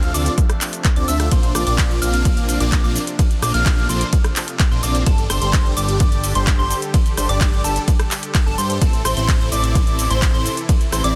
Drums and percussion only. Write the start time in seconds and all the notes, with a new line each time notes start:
0.03 closed hi-hat, cabasa
0.14 open hi-hat, cabasa
0.26 closed hi-hat, cabasa
0.38 kick, closed hi-hat, cabasa
0.49 cross-stick, closed hi-hat, cabasa
0.61 clap, open hi-hat, cabasa
0.73 closed hi-hat, cabasa
0.85 kick, clap, closed hi-hat, cabasa
0.96 closed hi-hat, cabasa
1.08 open hi-hat, cabasa
1.20 cross-stick, closed hi-hat, cabasa
1.31 kick, closed hi-hat, ride, cabasa
1.43 closed hi-hat, cabasa
1.55 cross-stick, open hi-hat, cabasa
1.67 closed hi-hat, cabasa
1.78 kick, clap, closed hi-hat, ride, cabasa
1.91 cabasa
2.02 open hi-hat, cabasa
2.14 closed hi-hat, cabasa
2.25 kick, closed hi-hat, ride, cabasa
2.37 closed hi-hat, cabasa
2.49 open hi-hat, cabasa
2.60 closed hi-hat, cabasa
2.72 kick, clap, closed hi-hat, ride, cabasa
2.84 cabasa
2.96 open hi-hat, cabasa
3.07 closed hi-hat, cabasa
3.19 kick, closed hi-hat, ride, cabasa
3.31 closed hi-hat, cabasa
3.42 cross-stick, open hi-hat, cabasa
3.54 closed hi-hat, cabasa
3.66 kick, clap, closed hi-hat, ride, cabasa
3.78 cabasa
3.89 open hi-hat, cabasa
4.01 closed hi-hat, cabasa
4.13 kick, closed hi-hat, ride, cabasa
4.24 cross-stick, closed hi-hat, cabasa
4.36 clap, open hi-hat, cabasa
4.48 closed hi-hat, cabasa
4.60 kick, clap, closed hi-hat, ride, cabasa
4.72 cabasa
4.83 open hi-hat, cabasa
4.95 closed hi-hat, cabasa
5.06 kick, closed hi-hat, ride, cabasa
5.18 closed hi-hat, cabasa
5.30 cross-stick, open hi-hat, cabasa
5.42 closed hi-hat, cabasa
5.53 kick, clap, closed hi-hat, ride, cabasa
5.66 cabasa
5.77 open hi-hat, cabasa
5.89 closed hi-hat, cabasa
6.00 kick, closed hi-hat, ride, cabasa
6.12 closed hi-hat, cabasa
6.24 open hi-hat, cabasa
6.35 closed hi-hat, cabasa
6.47 kick, clap, closed hi-hat, ride, cabasa
6.59 cabasa
6.71 open hi-hat, cabasa
6.82 closed hi-hat, cabasa
6.94 kick, closed hi-hat, ride, cabasa
7.06 closed hi-hat, cabasa
7.17 cross-stick, open hi-hat, cabasa
7.29 closed hi-hat, cabasa
7.41 kick, clap, closed hi-hat, ride, cabasa
7.53 cabasa
7.64 open hi-hat, cabasa
7.76 closed hi-hat, cabasa
7.88 kick, closed hi-hat, ride, cabasa
7.99 cross-stick, closed hi-hat, cabasa
8.11 clap, open hi-hat, cabasa
8.23 closed hi-hat, cabasa
8.35 kick, clap, closed hi-hat, ride, cabasa
8.47 cabasa
8.58 open hi-hat, cabasa
8.70 closed hi-hat, cabasa
8.82 kick, closed hi-hat, ride, cabasa
8.93 closed hi-hat, cabasa
9.05 cross-stick, open hi-hat, cabasa
9.17 closed hi-hat, cabasa
9.28 kick, clap, closed hi-hat, ride, cabasa
9.41 cabasa
9.52 open hi-hat, cabasa
9.64 closed hi-hat, cabasa
9.75 kick, closed hi-hat, ride, cabasa
9.87 closed hi-hat, cabasa
9.99 open hi-hat, cabasa
10.11 closed hi-hat, cabasa
10.22 kick, clap, closed hi-hat, ride, cabasa
10.35 cabasa
10.46 open hi-hat, cabasa
10.57 closed hi-hat, cabasa
10.69 kick, closed hi-hat, ride, cabasa
10.81 closed hi-hat, cabasa
10.92 cross-stick, open hi-hat, cabasa
11.04 closed hi-hat, cabasa